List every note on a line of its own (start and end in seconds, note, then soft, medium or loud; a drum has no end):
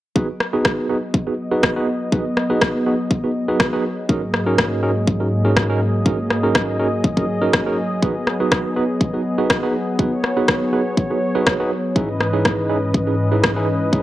0.16 11.92 F#3 medium
0.16 0.27 B3 medium
0.16 4.05 B3 medium
0.16 0.27 D#4 medium
0.16 0.27 F#4 medium
0.16 0.27 G#4 medium
0.16 11.92 G#4 medium
0.16 0.27 B4 loud
0.16 4.05 D#5 medium
0.16 kick loud
0.40 cross-stick medium
0.53 0.87 B3 medium
0.53 0.87 D#4 medium
0.53 0.87 F#4 medium
0.53 0.87 G#4 medium
0.53 0.87 B4 medium
0.65 kick loud
0.65 cross-stick medium
0.89 0.97 B3 medium
0.89 0.97 D#4 medium
0.89 0.97 F#4 medium
0.89 0.97 G#4 medium
0.89 0.97 B4 medium
1.14 kick loud
1.27 1.33 B3 medium
1.27 1.33 D#4 medium
1.27 1.33 F#4 medium
1.27 1.33 G#4 medium
1.27 1.33 B4 medium
1.51 1.73 B3 medium
1.51 1.73 D#4 medium
1.51 1.73 F#4 medium
1.51 1.73 G#4 medium
1.51 1.73 B4 loud
1.63 kick loud
1.63 cross-stick loud
1.76 1.87 B3 medium
1.76 1.87 D#4 medium
1.76 1.87 F#4 medium
1.76 1.87 G#4 medium
1.76 1.87 B4 loud
2.12 2.24 B3 medium
2.12 2.24 D#4 medium
2.12 2.24 F#4 medium
2.12 2.24 G#4 medium
2.12 2.24 B4 loud
2.12 kick loud
2.37 cross-stick medium
2.50 2.83 B3 medium
2.50 2.83 D#4 medium
2.50 2.83 F#4 medium
2.50 2.83 G#4 medium
2.50 2.83 B4 loud
2.61 kick loud
2.61 cross-stick loud
2.86 2.94 B3 medium
2.86 2.94 D#4 medium
2.86 2.94 F#4 medium
2.86 2.94 G#4 medium
2.86 2.94 B4 medium
3.11 kick loud
3.24 3.30 B3 medium
3.24 3.30 D#4 medium
3.24 3.30 F#4 medium
3.24 3.30 G#4 medium
3.24 3.30 B4 medium
3.48 3.70 B3 medium
3.48 3.70 D#4 medium
3.48 3.70 F#4 medium
3.48 3.70 G#4 medium
3.48 3.70 B4 loud
3.60 kick loud
3.60 cross-stick loud
3.73 3.83 B3 medium
3.73 3.83 D#4 medium
3.73 3.83 F#4 medium
3.73 3.83 G#4 medium
3.73 3.83 B4 loud
4.09 7.98 G#2 medium
4.09 7.99 A#3 medium
4.09 4.21 C#4 medium
4.09 4.21 D#4 medium
4.09 4.21 F#4 medium
4.09 4.21 G#4 medium
4.09 4.21 A#4 loud
4.09 9.95 D#5 medium
4.09 kick loud
4.34 cross-stick medium
4.47 4.80 C#4 medium
4.47 4.80 D#4 medium
4.47 4.80 F#4 medium
4.47 4.80 G#4 medium
4.47 4.80 A#4 loud
4.58 kick loud
4.58 cross-stick loud
4.83 4.90 C#4 medium
4.83 4.90 D#4 medium
4.83 4.90 F#4 medium
4.83 4.90 G#4 medium
4.83 4.90 A#4 medium
5.07 kick loud
5.20 5.27 C#4 medium
5.20 5.27 D#4 medium
5.20 5.27 F#4 medium
5.20 5.27 G#4 medium
5.20 5.27 A#4 medium
5.45 5.66 C#4 medium
5.45 5.66 D#4 medium
5.45 5.66 F#4 medium
5.45 5.66 G#4 medium
5.45 5.66 A#4 loud
5.57 kick loud
5.57 cross-stick loud
5.70 5.80 C#4 medium
5.70 5.80 D#4 medium
5.70 5.80 F#4 medium
5.70 5.80 G#4 medium
5.70 5.80 A#4 loud
6.06 6.17 C#4 medium
6.06 6.17 D#4 medium
6.06 6.17 F#4 medium
6.06 6.17 G#4 medium
6.06 6.17 A#4 loud
6.06 kick loud
6.30 cross-stick medium
6.43 6.77 C#4 medium
6.43 6.77 D#4 medium
6.43 6.77 F#4 medium
6.43 6.77 G#4 medium
6.43 6.77 A#4 loud
6.55 kick loud
6.55 cross-stick loud
6.79 6.87 C#4 medium
6.79 6.87 D#4 medium
6.79 6.87 F#4 medium
6.79 6.87 G#4 medium
6.79 6.87 A#4 medium
7.04 kick loud
7.17 7.24 C#4 medium
7.17 7.24 D#4 medium
7.17 7.24 F#4 medium
7.17 7.24 G#4 medium
7.17 7.24 A#4 medium
7.17 kick medium
7.42 7.63 C#4 medium
7.42 7.63 D#4 medium
7.42 7.63 F#4 medium
7.42 7.63 G#4 medium
7.42 7.63 A#4 loud
7.53 kick loud
7.53 cross-stick loud
7.66 7.77 C#4 medium
7.66 7.77 D#4 medium
7.66 7.77 F#4 medium
7.66 7.77 G#4 medium
7.66 7.77 A#4 loud
8.02 8.14 B3 medium
8.02 11.92 B3 medium
8.02 8.14 D#4 medium
8.02 8.14 F#4 medium
8.02 8.14 G#4 medium
8.02 8.14 B4 loud
8.02 kick loud
8.27 cross-stick medium
8.40 8.74 B3 medium
8.40 8.74 D#4 medium
8.40 8.74 F#4 medium
8.40 8.74 G#4 medium
8.40 8.74 B4 loud
8.52 kick loud
8.52 cross-stick medium
8.76 8.84 B3 medium
8.76 8.84 D#4 medium
8.76 8.84 F#4 medium
8.76 8.84 G#4 medium
8.76 8.84 B4 medium
9.01 kick loud
9.14 9.20 B3 medium
9.14 9.20 D#4 medium
9.14 9.20 F#4 medium
9.14 9.20 G#4 medium
9.14 9.20 B4 medium
9.38 9.60 B3 medium
9.38 9.60 D#4 medium
9.38 9.60 F#4 medium
9.38 9.60 G#4 medium
9.38 9.60 B4 loud
9.50 kick loud
9.50 cross-stick loud
9.63 9.74 B3 medium
9.63 9.74 D#4 medium
9.63 9.74 F#4 medium
9.63 9.74 G#4 medium
9.63 9.74 B4 loud
9.99 10.11 B3 medium
9.99 10.11 D#4 medium
9.99 10.11 F#4 medium
9.99 10.11 G#4 medium
9.99 10.11 B4 loud
9.99 11.94 C#5 medium
9.99 kick loud
10.24 cross-stick medium
10.37 10.70 B3 medium
10.37 10.70 D#4 medium
10.37 10.70 F#4 medium
10.37 10.70 G#4 medium
10.37 10.70 B4 loud
10.48 kick loud
10.48 cross-stick loud
10.73 10.80 B3 medium
10.73 10.80 D#4 medium
10.73 10.80 F#4 medium
10.73 10.80 G#4 medium
10.73 10.80 B4 medium
10.97 kick loud
11.10 11.17 B3 medium
11.10 11.17 D#4 medium
11.10 11.17 F#4 medium
11.10 11.17 G#4 medium
11.10 11.17 B4 medium
11.35 11.57 B3 medium
11.35 11.57 D#4 medium
11.35 11.57 F#4 medium
11.35 11.57 G#4 medium
11.35 11.57 B4 loud
11.47 kick loud
11.47 cross-stick loud
11.60 11.70 B3 medium
11.60 11.70 D#4 medium
11.60 11.70 F#4 medium
11.60 11.70 G#4 medium
11.60 11.70 B4 loud
11.96 14.03 G#2 medium
11.96 14.03 E3 medium
11.96 14.03 C#4 medium
11.96 12.08 C#4 medium
11.96 12.08 D#4 medium
11.96 12.08 E4 medium
11.96 12.08 G#4 medium
11.96 12.08 B4 loud
11.96 14.03 B4 medium
11.96 14.03 D#5 medium
11.96 kick loud
12.21 cross-stick medium
12.33 12.67 C#4 medium
12.33 12.67 D#4 medium
12.33 12.67 E4 medium
12.33 12.67 G#4 medium
12.33 12.67 B4 loud
12.45 kick loud
12.45 cross-stick medium
12.69 12.77 C#4 medium
12.69 12.77 D#4 medium
12.69 12.77 E4 medium
12.69 12.77 G#4 medium
12.69 12.77 B4 medium
12.94 kick loud
13.07 13.14 C#4 medium
13.07 13.14 D#4 medium
13.07 13.14 E4 medium
13.07 13.14 G#4 medium
13.07 13.14 B4 medium
13.32 13.53 C#4 medium
13.32 13.53 D#4 medium
13.32 13.53 E4 medium
13.32 13.53 G#4 medium
13.32 13.53 B4 loud
13.44 kick loud
13.44 cross-stick loud
13.56 13.67 C#4 medium
13.56 13.67 D#4 medium
13.56 13.67 E4 medium
13.56 13.67 G#4 medium
13.56 13.67 B4 loud
13.93 14.03 C#4 medium
13.93 14.03 D#4 medium
13.93 14.03 E4 medium
13.93 14.03 G#4 medium
13.93 14.03 B4 loud
13.93 kick loud